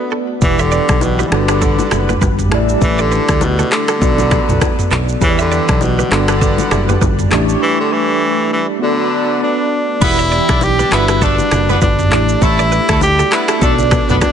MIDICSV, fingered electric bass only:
0, 0, Header, 1, 2, 480
1, 0, Start_track
1, 0, Key_signature, 1, "minor"
1, 0, Tempo, 600000
1, 333, Time_signature, 4, 2, 24, 8
1, 11456, End_track
2, 0, Start_track
2, 0, Title_t, "Fingered electric bass"
2, 0, Program_c, 0, 33
2, 334, Note_on_c, 0, 28, 100
2, 626, Note_off_c, 0, 28, 0
2, 714, Note_on_c, 0, 35, 85
2, 976, Note_off_c, 0, 35, 0
2, 1054, Note_on_c, 0, 31, 99
2, 1424, Note_off_c, 0, 31, 0
2, 1534, Note_on_c, 0, 30, 83
2, 1719, Note_off_c, 0, 30, 0
2, 1772, Note_on_c, 0, 31, 86
2, 2012, Note_off_c, 0, 31, 0
2, 2012, Note_on_c, 0, 33, 105
2, 2197, Note_off_c, 0, 33, 0
2, 2252, Note_on_c, 0, 33, 104
2, 2545, Note_off_c, 0, 33, 0
2, 2631, Note_on_c, 0, 38, 91
2, 2894, Note_off_c, 0, 38, 0
2, 3213, Note_on_c, 0, 35, 108
2, 3505, Note_off_c, 0, 35, 0
2, 3589, Note_on_c, 0, 35, 89
2, 3668, Note_off_c, 0, 35, 0
2, 3930, Note_on_c, 0, 35, 86
2, 4116, Note_off_c, 0, 35, 0
2, 4172, Note_on_c, 0, 40, 107
2, 4464, Note_off_c, 0, 40, 0
2, 4551, Note_on_c, 0, 35, 91
2, 4814, Note_off_c, 0, 35, 0
2, 4891, Note_on_c, 0, 31, 103
2, 5262, Note_off_c, 0, 31, 0
2, 5372, Note_on_c, 0, 30, 94
2, 5557, Note_off_c, 0, 30, 0
2, 5612, Note_on_c, 0, 31, 97
2, 5797, Note_off_c, 0, 31, 0
2, 5852, Note_on_c, 0, 33, 101
2, 6037, Note_off_c, 0, 33, 0
2, 8013, Note_on_c, 0, 28, 101
2, 8305, Note_off_c, 0, 28, 0
2, 8393, Note_on_c, 0, 35, 89
2, 8655, Note_off_c, 0, 35, 0
2, 8735, Note_on_c, 0, 31, 96
2, 9104, Note_off_c, 0, 31, 0
2, 9215, Note_on_c, 0, 30, 90
2, 9399, Note_off_c, 0, 30, 0
2, 9453, Note_on_c, 0, 31, 89
2, 9695, Note_off_c, 0, 31, 0
2, 9695, Note_on_c, 0, 33, 109
2, 9879, Note_off_c, 0, 33, 0
2, 9934, Note_on_c, 0, 33, 109
2, 10226, Note_off_c, 0, 33, 0
2, 10312, Note_on_c, 0, 38, 92
2, 10575, Note_off_c, 0, 38, 0
2, 10894, Note_on_c, 0, 35, 107
2, 11186, Note_off_c, 0, 35, 0
2, 11273, Note_on_c, 0, 35, 91
2, 11350, Note_off_c, 0, 35, 0
2, 11456, End_track
0, 0, End_of_file